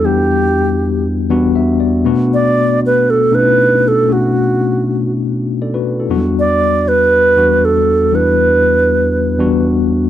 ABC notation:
X:1
M:4/4
L:1/16
Q:1/4=119
K:Edor
V:1 name="Alto flute"
G8 z8 | z2 d4 B2 A2 B4 A2 | F8 z8 | z2 d4 B6 A4 |
B12 z4 |]
V:2 name="Tine electric piano"
z8 z2 f2 e2 d2 | z16 | z12 [Ad] [FB]2 [EA]- | [EA] z12 z3 |
z16 |]
V:3 name="Tine electric piano"
[E,,G,B,DG]6- [E,,G,B,DG] z3 [E,,G,B,DF]6 | [B,,A,B,DF]6- [B,,A,B,DF] z3 [B,,A,CD^DE]6 | [B,,A,CDF]6- [B,,A,CDF] z8 z | [E,,F,G,B,DF]6- [E,,F,G,B,DF] z3 [E,,G,B,DF]6 |
[E,,G,B,DE]6- [E,,G,B,DE] z3 [E,,G,B,DF]6 |]